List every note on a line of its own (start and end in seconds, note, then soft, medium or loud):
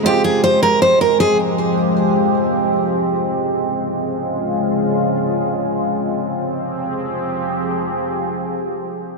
0.03 3.08 F3 medium
0.03 3.06 G#3 medium
0.03 3.08 G#3 medium
0.03 3.07 C4 medium
0.03 6.13 C4 medium
0.03 3.08 F4 medium
0.03 3.08 G4 medium
0.03 0.22 G4 loud
0.08 3.09 G4 medium
0.24 0.41 G#4 medium
0.44 0.60 C5 medium
0.63 0.79 A#4 medium
0.82 0.99 C5 medium
1.01 1.18 A#4 medium
1.20 1.37 G#4 medium
3.11 6.14 C#3 medium
3.11 6.14 G#3 medium
3.11 6.14 F4 medium
6.17 9.18 F3 medium
6.17 9.18 C4 medium
6.17 9.18 G4 medium
6.17 9.18 G#4 medium